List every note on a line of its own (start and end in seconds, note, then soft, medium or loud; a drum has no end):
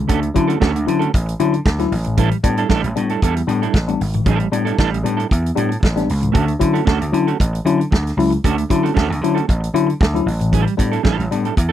0.08 0.29 D2 loud
0.08 0.23 D3 medium
0.08 0.27 A3 medium
0.08 0.21 C#4 medium
0.08 0.21 F#4 medium
0.08 0.21 A4 medium
0.08 kick loud
0.08 closed hi-hat medium
0.22 muted clean electric guitar stroke medium
0.22 closed hi-hat soft
0.35 0.55 D3 medium
0.35 0.49 F#3 medium
0.35 0.47 C#4 medium
0.35 0.47 E4 loud
0.35 muted clean electric guitar stroke soft
0.35 kick medium
0.35 closed hi-hat medium
0.48 0.59 A3 medium
0.48 0.54 C#4 soft
0.48 0.60 C#4 medium
0.48 0.54 E4 soft
0.48 0.60 F#4 medium
0.48 0.60 A4 medium
0.48 closed hi-hat soft
0.60 0.72 D2 medium
0.60 0.80 A3 medium
0.60 0.73 C#4 loud
0.60 0.73 F#4 loud
0.60 0.72 A4 medium
0.60 kick loud
0.60 snare loud
0.74 0.84 D2 medium
0.74 muted clean electric guitar stroke soft
0.74 closed hi-hat soft
0.85 1.07 D3 loud
0.85 1.01 F#3 medium
0.85 1.01 C#4 medium
0.85 1.01 E4 medium
0.85 muted clean electric guitar stroke soft
0.85 closed hi-hat medium
0.99 1.12 A3 soft
0.99 1.13 C#4 medium
0.99 1.12 F#4 medium
0.99 1.13 A4 medium
0.99 closed hi-hat soft
1.14 1.33 A1 medium
1.14 kick loud
1.14 closed hi-hat medium
1.26 muted clean electric guitar stroke soft
1.26 closed hi-hat medium
1.40 1.59 D3 medium
1.40 1.54 F#3 medium
1.40 1.54 C#4 medium
1.40 1.54 E4 loud
1.40 closed hi-hat medium
1.53 muted clean electric guitar stroke soft
1.53 closed hi-hat soft
1.65 1.85 D2 medium
1.65 muted clean electric guitar stroke soft
1.65 kick loud
1.65 snare loud
1.79 1.92 F#3 medium
1.79 1.92 C#4 medium
1.79 1.92 E4 medium
1.79 muted clean electric guitar stroke soft
1.79 snare soft
1.79 closed hi-hat soft
1.92 2.30 A1 medium
1.92 open hi-hat medium
2.04 2.17 A2 medium
2.04 2.17 E3 medium
2.04 muted clean electric guitar stroke soft
2.04 closed hi-hat medium
2.17 2.32 A2 medium
2.17 2.32 E3 medium
2.17 2.36 G3 medium
2.17 2.31 D4 medium
2.17 2.31 E4 loud
2.17 2.30 A4 loud
2.17 kick loud
2.17 closed hi-hat medium
2.31 muted clean electric guitar stroke medium
2.31 closed hi-hat soft
2.44 2.63 A2 medium
2.44 2.58 G3 medium
2.44 2.56 B3 medium
2.44 2.56 D4 loud
2.44 muted clean electric guitar stroke soft
2.44 kick medium
2.44 closed hi-hat medium
2.57 2.68 G3 medium
2.57 2.62 B3 soft
2.57 2.62 D4 soft
2.57 2.68 D4 medium
2.57 2.69 E4 medium
2.57 2.70 A4 medium
2.57 closed hi-hat soft
2.69 2.80 A1 medium
2.69 2.88 G3 medium
2.69 2.83 D4 medium
2.69 2.83 E4 loud
2.69 2.83 A4 loud
2.69 kick medium
2.69 snare medium
2.84 2.93 A1 medium
2.84 muted clean electric guitar stroke soft
2.84 closed hi-hat soft
2.95 3.16 A2 loud
2.95 3.10 G3 medium
2.95 3.10 B3 medium
2.95 3.10 D4 medium
2.95 muted clean electric guitar stroke soft
2.95 closed hi-hat medium
3.09 3.22 G3 soft
3.09 3.22 D4 soft
3.09 3.22 E4 medium
3.09 3.22 A4 medium
3.09 closed hi-hat soft
3.22 3.41 E2 medium
3.22 3.41 G3 medium
3.22 3.36 D4 medium
3.22 3.36 E4 medium
3.22 3.35 A4 medium
3.22 kick loud
3.22 closed hi-hat medium
3.37 muted clean electric guitar stroke soft
3.37 closed hi-hat medium
3.47 3.67 A2 loud
3.47 3.62 G3 medium
3.47 3.62 B3 medium
3.47 3.62 D4 loud
3.47 muted clean electric guitar stroke soft
3.47 closed hi-hat medium
3.62 3.74 G3 medium
3.62 3.75 D4 medium
3.62 3.75 E4 medium
3.62 3.76 A4 medium
3.62 closed hi-hat soft
3.74 3.93 A1 medium
3.74 kick loud
3.74 snare loud
3.88 4.00 G3 medium
3.88 4.00 B3 medium
3.88 4.00 D4 medium
3.88 muted clean electric guitar stroke soft
3.88 closed hi-hat soft
4.01 4.20 G#1 medium
4.01 open hi-hat medium
4.13 4.24 A2 medium
4.13 4.23 E3 medium
4.13 muted clean electric guitar stroke soft
4.13 closed hi-hat soft
4.25 4.45 A1 loud
4.25 4.40 A2 medium
4.25 4.39 E3 medium
4.25 4.47 G3 medium
4.25 4.40 D4 medium
4.25 4.40 E4 loud
4.25 4.39 A4 medium
4.25 kick loud
4.25 closed hi-hat medium
4.40 muted clean electric guitar stroke medium
4.40 closed hi-hat soft
4.52 4.71 A2 medium
4.52 4.66 G3 medium
4.52 4.65 B3 medium
4.52 4.65 D4 loud
4.52 muted clean electric guitar stroke soft
4.52 closed hi-hat medium
4.65 4.77 G3 medium
4.65 4.71 B3 soft
4.65 4.71 D4 soft
4.65 4.78 D4 medium
4.65 4.78 E4 medium
4.65 4.79 A4 medium
4.65 closed hi-hat soft
4.78 4.89 A1 medium
4.78 4.97 G3 medium
4.78 4.92 D4 medium
4.78 4.91 E4 medium
4.78 4.91 A4 medium
4.78 kick loud
4.78 snare medium
4.92 5.02 A1 medium
4.92 muted clean electric guitar stroke soft
4.92 closed hi-hat soft
5.03 5.24 A2 medium
5.03 5.18 G3 medium
5.03 5.18 B3 medium
5.03 5.18 D4 medium
5.03 muted clean electric guitar stroke soft
5.03 closed hi-hat medium
5.17 5.28 G3 soft
5.17 5.28 D4 soft
5.17 5.28 E4 medium
5.17 5.29 A4 medium
5.17 closed hi-hat soft
5.30 5.50 E2 medium
5.30 muted clean electric guitar stroke soft
5.30 kick medium
5.30 closed hi-hat medium
5.43 muted clean electric guitar stroke soft
5.43 closed hi-hat medium
5.55 5.76 A2 medium
5.55 5.70 G3 medium
5.55 5.70 B3 medium
5.55 5.70 D4 medium
5.55 closed hi-hat medium
5.69 muted clean electric guitar stroke medium
5.69 closed hi-hat soft
5.80 6.02 A1 medium
5.80 muted clean electric guitar stroke soft
5.80 kick loud
5.85 snare loud
5.93 6.08 G3 medium
5.93 6.09 B3 medium
5.93 6.09 D4 medium
5.93 muted clean electric guitar stroke soft
5.93 closed hi-hat soft
5.98 snare soft
6.09 6.29 C#2 medium
6.09 open hi-hat medium
6.21 6.35 A2 medium
6.21 6.35 E3 medium
6.21 muted clean electric guitar stroke soft
6.21 closed hi-hat medium
6.32 6.54 D2 loud
6.32 6.48 D3 medium
6.32 6.52 A3 medium
6.32 6.47 C#4 medium
6.32 6.46 F#4 medium
6.32 6.46 A4 medium
6.32 kick loud
6.32 closed hi-hat medium
6.47 muted clean electric guitar stroke soft
6.47 closed hi-hat soft
6.59 6.80 D3 medium
6.59 6.74 F#3 loud
6.59 6.73 C#4 medium
6.59 6.73 E4 loud
6.59 muted clean electric guitar stroke soft
6.59 kick medium
6.59 closed hi-hat medium
6.73 6.84 A3 soft
6.73 6.85 C#4 medium
6.73 6.80 C#4 soft
6.73 6.80 E4 soft
6.73 6.86 F#4 medium
6.73 6.86 A4 medium
6.73 closed hi-hat soft
6.85 6.97 D2 medium
6.85 7.05 A3 medium
6.85 7.01 C#4 medium
6.85 7.00 F#4 medium
6.85 6.99 A4 medium
6.85 kick loud
6.85 snare medium
7.01 7.10 D2 medium
7.01 muted clean electric guitar stroke soft
7.01 closed hi-hat medium
7.12 7.32 D3 loud
7.12 7.26 F#3 medium
7.12 7.27 C#4 medium
7.12 7.27 E4 medium
7.12 muted clean electric guitar stroke soft
7.12 closed hi-hat medium
7.27 7.38 A3 soft
7.27 7.38 C#4 medium
7.27 7.39 F#4 medium
7.27 7.39 A4 medium
7.27 closed hi-hat soft
7.39 7.59 A1 medium
7.39 muted clean electric guitar stroke soft
7.39 kick medium
7.39 closed hi-hat medium
7.53 muted clean electric guitar stroke soft
7.53 closed hi-hat medium
7.65 7.84 D3 medium
7.65 7.79 F#3 loud
7.65 7.80 C#4 medium
7.65 7.80 E4 medium
7.65 closed hi-hat medium
7.78 muted clean electric guitar stroke medium
7.78 closed hi-hat soft
7.91 8.11 D2 medium
7.91 muted clean electric guitar stroke soft
7.91 kick loud
7.91 snare loud
8.03 muted clean electric guitar stroke medium
8.07 snare soft
8.07 closed hi-hat soft
8.17 8.36 C#2 medium
8.17 8.32 F#3 medium
8.17 8.32 C#4 medium
8.17 8.32 E4 medium
8.17 open hi-hat medium
8.31 muted clean electric guitar stroke soft
8.31 closed hi-hat soft
8.44 8.63 D2 loud
8.44 8.58 D3 medium
8.44 8.62 A3 medium
8.44 8.58 C#4 medium
8.44 8.57 F#4 medium
8.44 8.57 A4 medium
8.44 kick loud
8.44 closed hi-hat medium
8.58 muted clean electric guitar stroke soft
8.58 closed hi-hat soft
8.69 8.89 D3 medium
8.69 8.84 F#3 medium
8.69 8.84 C#4 medium
8.69 8.84 E4 loud
8.69 muted clean electric guitar stroke soft
8.69 kick medium
8.69 closed hi-hat medium
8.83 8.93 A3 medium
8.83 8.93 C#4 medium
8.83 8.89 C#4 soft
8.83 8.89 E4 soft
8.83 8.94 F#4 medium
8.83 8.94 A4 medium
8.83 closed hi-hat soft
8.94 9.06 D2 medium
8.94 9.13 A3 medium
8.94 9.10 C#4 loud
8.94 9.09 F#4 medium
8.94 9.08 A4 loud
8.94 kick loud
8.94 snare medium
9.10 9.18 D2 medium
9.10 muted clean electric guitar stroke soft
9.10 closed hi-hat soft
9.21 9.40 D3 loud
9.21 9.36 F#3 medium
9.21 9.36 C#4 medium
9.21 9.37 E4 loud
9.21 muted clean electric guitar stroke soft
9.21 closed hi-hat medium
9.35 9.46 A3 soft
9.35 9.46 C#4 soft
9.35 9.47 F#4 medium
9.35 9.47 A4 medium
9.35 closed hi-hat soft
9.47 9.68 A1 medium
9.47 muted clean electric guitar stroke soft
9.47 kick medium
9.47 closed hi-hat medium
9.61 muted clean electric guitar stroke soft
9.61 closed hi-hat medium
9.74 9.93 D3 medium
9.74 9.88 F#3 medium
9.74 9.88 C#4 medium
9.74 9.88 E4 loud
9.74 closed hi-hat medium
9.87 muted clean electric guitar stroke medium
9.87 closed hi-hat soft
10.00 10.20 D2 medium
10.00 muted clean electric guitar stroke soft
10.00 kick loud
10.00 snare loud
10.13 10.26 F#3 medium
10.13 10.26 C#4 medium
10.13 10.27 E4 medium
10.13 muted clean electric guitar stroke soft
10.13 closed hi-hat soft
10.26 10.64 A1 medium
10.26 open hi-hat medium
10.40 10.51 A2 medium
10.40 10.51 E3 medium
10.40 muted clean electric guitar stroke soft
10.40 closed hi-hat soft
10.52 10.66 A2 medium
10.52 10.66 E3 medium
10.52 10.73 G3 medium
10.52 10.66 D4 medium
10.52 10.66 E4 medium
10.52 10.65 A4 medium
10.52 kick loud
10.52 closed hi-hat medium
10.67 muted clean electric guitar stroke soft
10.67 closed hi-hat soft
10.77 10.98 A2 medium
10.77 10.92 G3 medium
10.77 10.90 B3 medium
10.77 10.91 D4 loud
10.77 muted clean electric guitar stroke soft
10.77 kick medium
10.77 closed hi-hat medium
10.92 11.02 G3 soft
10.92 10.97 B3 soft
10.92 10.97 D4 soft
10.92 11.02 D4 medium
10.92 11.03 E4 medium
10.92 11.04 A4 medium
10.92 closed hi-hat soft
11.03 11.15 A1 medium
11.03 11.24 G3 medium
11.03 11.19 D4 medium
11.03 11.19 E4 medium
11.03 11.18 A4 medium
11.03 kick loud
11.03 snare medium
11.19 11.28 A1 loud
11.19 muted clean electric guitar stroke soft
11.19 closed hi-hat soft
11.31 11.50 A2 loud
11.31 11.45 G3 medium
11.31 11.45 B3 medium
11.31 11.45 D4 medium
11.31 muted clean electric guitar stroke soft
11.31 closed hi-hat medium
11.45 11.55 G3 soft
11.45 11.55 D4 soft
11.45 11.56 E4 medium
11.45 11.56 A4 medium
11.45 closed hi-hat soft
11.56 11.72 E2 medium
11.56 muted clean electric guitar stroke soft
11.56 kick loud
11.56 closed hi-hat medium
11.69 11.72 A4 medium